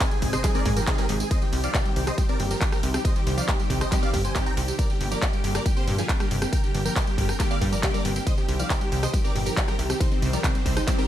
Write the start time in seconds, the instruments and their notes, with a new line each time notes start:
0.00 synth pluck C3, kick, clap, closed hi-hat, ride, tambourine
0.11 analog synth pad D#3 G#3 C4 G#4, synth pluck G3, supersaw synth G#4, closed hi-hat, tambourine
0.22 analog synth bass G#1, synth pluck C3, supersaw synth G#4, kick, open hi-hat
0.33 synth pluck C3, supersaw synth C5 D#5, cross-stick, closed hi-hat, tambourine
0.44 analog synth pad D#3 G#3 C4 G#4, synth pluck G3, supersaw synth G#4, kick, clap, closed hi-hat, ride, tambourine
0.55 synth pluck C4, supersaw synth A#4 D5, tambourine
0.66 analog synth bass G#2, synth pluck A#2, supersaw synth G#4, kick, open hi-hat
0.76 analog synth pad D#3 G#3 C4 G#4, synth pluck F3, supersaw synth G4 A#4, closed hi-hat, tambourine
0.87 synth pluck C3, analog synth pad D#3 G#3 C4 G#4, supersaw synth G#4, kick, clap, closed hi-hat, ride, tambourine
0.98 synth pluck G3, supersaw synth G4 A#4, closed hi-hat, tambourine
1.09 analog synth bass G#1, synth pluck C3, supersaw synth G#4, open hi-hat
1.20 analog synth pad D#3 G#3 C4 G#4, synth pluck C4, supersaw synth G#4, closed hi-hat, tambourine
1.31 synth pluck C3, supersaw synth C5 D#5, kick, closed hi-hat, ride, tambourine
1.42 synth pluck D#3, analog synth pad D#3 G3 C4 G4, supersaw synth G4, tambourine
1.53 analog synth bass C2, synth pluck C3, supersaw synth G4, open hi-hat
1.64 analog synth pad D#3 G3 C4 G4, synth pluck F3, supersaw synth D5 F5, closed hi-hat, tambourine
1.74 synth pluck C3, supersaw synth G4, kick, clap, closed hi-hat, ride, tambourine
1.85 analog synth pad D#3 G3 C4 G4, synth pluck G3, supersaw synth G4, closed hi-hat, tambourine
1.96 analog synth bass C2, synth pluck C3, supersaw synth G4, open hi-hat
2.07 synth pluck C3, supersaw synth C5 D#5, cross-stick, closed hi-hat, tambourine
2.18 analog synth pad D#3 G3 C4 G4, synth pluck G3, supersaw synth G4, kick, closed hi-hat, ride, tambourine
2.29 synth pluck C4, supersaw synth A#4 D5, tambourine
2.40 analog synth bass G1, synth pluck A#2, supersaw synth G4, open hi-hat
2.51 analog synth pad D#3 G3 C4 G4, synth pluck F3, supersaw synth G4 A#4, closed hi-hat, tambourine
2.61 synth pluck C3, analog synth pad D#3 G3 C4 G4, supersaw synth G4, kick, clap, closed hi-hat, ride, tambourine
2.72 synth pluck G3, supersaw synth G4 A#4, cross-stick, closed hi-hat, tambourine
2.83 analog synth bass C2, synth pluck C3, supersaw synth G4, open hi-hat
2.94 analog synth pad D#3 G3 C4 G4, synth pluck C4, supersaw synth G4, cross-stick, closed hi-hat, tambourine
3.05 synth pluck C3, supersaw synth C5 D#5, kick, closed hi-hat, ride, tambourine
3.16 synth pluck D#3, analog synth pad D#3 G3 C4 G4, supersaw synth G4, closed hi-hat, tambourine
3.27 analog synth bass C2, synth pluck C3, supersaw synth G4, open hi-hat
3.37 analog synth pad D#3 G3 C4 G4, synth pluck F3, supersaw synth D5 F5, closed hi-hat, tambourine
3.48 synth pluck C3, supersaw synth G4, kick, clap, closed hi-hat, ride, tambourine
3.59 analog synth pad D#3 G3 C4 G4, synth pluck G3, supersaw synth G4, closed hi-hat, tambourine
3.70 analog synth bass C2, synth pluck C3, supersaw synth G4, kick, open hi-hat
3.81 synth pluck C3, supersaw synth C5 D#5, cross-stick, closed hi-hat, tambourine
3.92 analog synth pad D#3 G3 C4 G4, synth pluck G3, supersaw synth G4, kick, clap, closed hi-hat, ride, tambourine
4.03 synth pluck C4, supersaw synth D5 F5, tambourine
4.13 analog synth bass G1, synth pluck C3, supersaw synth G4, kick, open hi-hat
4.24 synth pluck C3, analog synth pad D#3 G3 C4 G4, supersaw synth C5 G#5, closed hi-hat, tambourine
4.35 synth pluck G2, analog synth pad D#3 G3 C4 G4, supersaw synth G4, kick, clap, closed hi-hat, ride, tambourine
4.46 synth pluck C2, supersaw synth G5 A#5, closed hi-hat, tambourine
4.57 analog synth bass C2, synth pluck C3, supersaw synth G4, open hi-hat
4.68 synth pluck C3, analog synth pad D#3 G3 C4 G4, supersaw synth G4, closed hi-hat, tambourine
4.79 synth pluck C3, supersaw synth A#4 D5, kick, closed hi-hat, ride, tambourine
4.90 analog synth pad D3 G3 A#3 G4, synth pluck D3, supersaw synth G4, tambourine
5.00 analog synth bass G1, synth pluck C3, supersaw synth G4, open hi-hat
5.11 analog synth pad D3 G3 A#3 G4, synth pluck F3, supersaw synth A#4 D5, closed hi-hat, tambourine
5.22 synth pluck C3, supersaw synth G4, kick, clap, closed hi-hat, ride, tambourine
5.33 analog synth pad D3 G3 A#3 G4, synth pluck G3, supersaw synth G4, closed hi-hat, tambourine
5.44 analog synth bass G1, synth pluck C3, supersaw synth G4, open hi-hat
5.55 synth pluck C3, supersaw synth A#4 D5, cross-stick, closed hi-hat, tambourine
5.66 analog synth pad D3 G3 A#3 G4, synth pluck G3, supersaw synth G4, kick, closed hi-hat, ride, tambourine
5.77 synth pluck C4, supersaw synth G4 C5, tambourine
5.87 analog synth bass G2, synth pluck A#2, supersaw synth G4, open hi-hat
5.98 analog synth pad D3 G3 A#3 G4, synth pluck F3, supersaw synth F4 G#4, closed hi-hat, tambourine
6.09 synth pluck C3, analog synth pad D3 G3 A#3 G4, supersaw synth G4, kick, clap, closed hi-hat, ride, tambourine
6.20 synth pluck G3, supersaw synth A#3 G4, cross-stick, closed hi-hat, tambourine
6.31 analog synth bass G1, synth pluck C3, supersaw synth G4, open hi-hat
6.42 analog synth pad D3 G3 A#3 G4, synth pluck C4, supersaw synth G4, cross-stick, closed hi-hat, tambourine
6.53 synth pluck C3, supersaw synth A#4 G5, kick, closed hi-hat, ride, tambourine
6.64 analog synth pad D3 G3 A#3 G4, synth pluck D3, supersaw synth G4, tambourine
6.74 analog synth bass G1, synth pluck C3, supersaw synth G4, open hi-hat
6.85 analog synth pad D3 G3 A#3 G4, synth pluck F3, supersaw synth A#4 G5, closed hi-hat, tambourine
6.96 synth pluck C3, supersaw synth G4, kick, clap, closed hi-hat, ride, tambourine
7.07 analog synth pad D3 G3 A#3 G4, synth pluck G3, supersaw synth G4, closed hi-hat, tambourine
7.18 analog synth bass G1, synth pluck C3, supersaw synth G4, kick, open hi-hat
7.29 synth pluck C3, supersaw synth A#4 G5, cross-stick, closed hi-hat, tambourine
7.40 analog synth pad D3 G3 A#3 G4, synth pluck G3, supersaw synth G4, kick, clap, closed hi-hat, ride, tambourine
7.51 synth pluck C4, supersaw synth D5 F5, tambourine
7.61 analog synth bass G2, synth pluck A#2, supersaw synth G4, kick, open hi-hat
7.72 analog synth pad D3 G3 A#3 G4, synth pluck F3, supersaw synth A#4 D5, closed hi-hat, tambourine
7.83 synth pluck C3, analog synth pad D3 G3 A#3 G4, supersaw synth G4, kick, clap, closed hi-hat, ride, tambourine
7.94 synth pluck G3, supersaw synth A#4 D5, closed hi-hat, tambourine
8.05 analog synth bass G1, synth pluck C3, supersaw synth G4, open hi-hat
8.16 analog synth pad D3 G3 A#3 G4, synth pluck C4, supersaw synth G4, closed hi-hat, tambourine
8.27 synth pluck C3, supersaw synth C5 D#5, kick, closed hi-hat, ride, tambourine
8.37 analog synth pad D#3 G3 C4 G4, synth pluck D#3, supersaw synth G4, tambourine
8.49 analog synth bass C2, synth pluck C3, supersaw synth G4, open hi-hat
8.59 analog synth pad D#3 G3 C4 G4, synth pluck F3, supersaw synth D5 F5, closed hi-hat, tambourine
8.70 synth pluck C3, supersaw synth G4, kick, clap, closed hi-hat, ride, tambourine
8.81 analog synth pad D#3 G3 C4 G4, synth pluck G3, supersaw synth G4, closed hi-hat, tambourine
8.92 analog synth bass C2, synth pluck C3, supersaw synth G4, open hi-hat
9.03 synth pluck C3, supersaw synth C5 D#5, cross-stick, closed hi-hat, tambourine
9.13 analog synth pad D#3 G3 C4 G4, synth pluck G3, supersaw synth G4, kick, closed hi-hat, ride, tambourine
9.24 synth pluck C4, supersaw synth A#4 D5, tambourine
9.35 analog synth bass G1, synth pluck A#2, supersaw synth G4, open hi-hat
9.46 analog synth pad D#3 G3 C4 G4, synth pluck F3, supersaw synth G4 A#4, closed hi-hat, tambourine
9.57 synth pluck C3, analog synth pad D#3 G3 C4 G4, supersaw synth G4, kick, clap, closed hi-hat, ride, tambourine
9.68 synth pluck G3, supersaw synth G4 A#4, cross-stick, closed hi-hat, tambourine
9.78 analog synth bass C2, synth pluck C3, supersaw synth G4, open hi-hat
9.89 analog synth pad D#3 G3 C4 G4, synth pluck C4, supersaw synth G4, cross-stick, closed hi-hat, tambourine
10.00 synth pluck C3, supersaw synth D#4 C5, kick, closed hi-hat, ride, tambourine
10.11 synth pluck D#3, analog synth pad D#3 G3 C4 G4, supersaw synth C4, tambourine
10.22 analog synth bass C2, synth pluck C3, supersaw synth C4, open hi-hat
10.33 analog synth pad D#3 G3 C4 G4, synth pluck F3, supersaw synth A#4 D5, closed hi-hat, tambourine
10.44 synth pluck C3, supersaw synth C4, kick, clap, closed hi-hat, ride, tambourine
10.55 analog synth pad D#3 G3 C4 G4, synth pluck G3, supersaw synth C4, closed hi-hat, tambourine
10.66 analog synth bass C2, synth pluck C3, supersaw synth C4, kick, open hi-hat
10.76 synth pluck C3, supersaw synth D#4 C5, cross-stick, closed hi-hat, tambourine
10.87 analog synth pad D#3 G3 C4 G4, synth pluck G3, supersaw synth C4, kick, clap, closed hi-hat, ride, tambourine
10.98 synth pluck C4, supersaw synth G4 A#4, tambourine